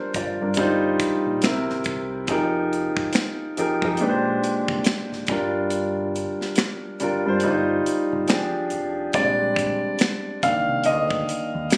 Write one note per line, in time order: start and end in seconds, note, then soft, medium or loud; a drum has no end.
0.00 0.57 G3 medium
0.00 0.42 D4 medium
0.00 0.16 F4 medium
0.00 0.42 A#4 medium
0.00 0.14 C5 medium
0.14 0.37 G1 medium
0.14 0.40 F4 medium
0.14 0.39 D5 medium
0.14 kick medium
0.14 closed hi-hat medium
0.41 0.56 G2 medium
0.41 0.82 D4 soft
0.41 0.81 A#4 medium
0.54 0.95 G1 medium
0.54 1.35 G3 medium
0.54 1.35 D#4 medium
0.54 kick medium
0.54 closed hi-hat medium
0.59 1.36 F4 medium
0.59 1.36 C5 medium
1.00 kick medium
1.00 closed hi-hat medium
1.26 1.41 A#1 medium
1.42 1.66 C2 medium
1.42 2.21 C3 medium
1.42 2.21 C4 medium
1.42 2.22 E4 medium
1.42 finger snap medium
1.42 snare loud
1.42 closed hi-hat medium
1.46 2.22 A#4 medium
1.69 1.84 G#1 medium
1.69 snare soft
1.84 2.30 C2 medium
1.84 kick loud
1.84 closed hi-hat medium
2.27 2.88 F1 loud
2.27 3.46 F3 medium
2.27 3.46 D#4 medium
2.27 3.47 G4 medium
2.27 3.47 G#4 medium
2.27 kick medium
2.27 closed hi-hat medium
2.32 3.47 A#4 medium
2.73 closed hi-hat medium
2.97 muted fingered electric bass stroke soft
2.97 kick medium
3.13 finger snap medium
3.13 snare medium
3.13 closed hi-hat medium
3.57 3.80 F1 medium
3.57 3.80 F3 medium
3.57 3.80 D#4 medium
3.57 3.80 G4 medium
3.57 3.81 G#4 medium
3.57 3.81 A#4 medium
3.57 closed hi-hat medium
3.82 4.03 F2 medium
3.82 4.00 F3 medium
3.82 4.00 D#4 medium
3.82 4.00 G4 medium
3.82 4.01 G#4 medium
3.82 4.01 A#4 medium
3.82 kick medium
3.97 5.17 A#2 medium
3.97 5.18 G#3 medium
3.97 closed hi-hat medium
4.01 4.38 A#1 medium
4.01 5.18 D4 medium
4.01 5.18 G4 medium
4.01 4.09 B4 medium
4.09 5.22 C5 loud
4.44 closed hi-hat medium
4.68 4.83 C2 medium
4.68 kick medium
4.84 finger snap medium
4.84 snare loud
4.84 closed hi-hat medium
5.12 5.26 G#1 medium
5.12 snare soft
5.27 6.25 G1 medium
5.27 6.85 G3 medium
5.27 6.85 D4 medium
5.27 6.86 F4 medium
5.27 kick loud
5.27 closed hi-hat medium
5.31 6.86 A#4 medium
5.70 closed hi-hat medium
6.16 closed hi-hat medium
6.41 muted fingered electric bass stroke soft
6.41 snare soft
6.56 finger snap medium
6.56 snare medium
6.56 closed hi-hat medium
7.00 7.23 G1 medium
7.00 7.23 G3 medium
7.00 7.23 D4 medium
7.00 7.24 F4 medium
7.00 7.24 A#4 medium
7.00 closed hi-hat medium
7.26 7.45 G2 medium
7.26 7.42 G3 medium
7.26 7.43 D4 medium
7.26 7.43 F4 medium
7.26 7.44 C5 medium
7.40 7.80 G1 medium
7.40 8.21 G3 medium
7.40 8.21 D#4 medium
7.40 closed hi-hat medium
7.45 8.22 F4 medium
7.45 8.22 C5 medium
7.86 muted fingered electric bass stroke soft
7.86 closed hi-hat medium
8.13 8.27 G1 medium
8.28 8.52 F1 medium
8.28 9.07 F3 medium
8.28 9.07 D4 medium
8.28 9.07 G4 medium
8.28 9.08 G#4 medium
8.28 finger snap medium
8.28 snare loud
8.28 closed hi-hat medium
8.70 9.09 F1 medium
8.70 closed hi-hat medium
9.13 9.74 A#1 loud
9.13 9.75 G3 medium
9.13 9.75 G#3 soft
9.13 9.75 C4 soft
9.13 9.75 D4 medium
9.13 10.47 D5 medium
9.13 kick loud
9.13 closed hi-hat medium
9.56 kick medium
9.56 closed hi-hat medium
9.84 muted fingered electric bass stroke soft
9.99 finger snap medium
9.99 snare loud
9.99 closed hi-hat medium
10.43 10.65 C2 medium
10.43 11.03 D#3 medium
10.43 11.04 A#3 soft
10.43 11.04 D4 medium
10.43 10.87 F5 loud
10.43 kick medium
10.43 closed hi-hat medium
10.68 10.88 C3 medium
10.84 11.23 D2 medium
10.84 11.77 D#5 loud
10.84 closed hi-hat medium
11.11 kick medium
11.29 closed hi-hat medium
11.55 11.69 D#2 medium
11.70 finger snap medium
11.70 snare loud
11.70 closed hi-hat medium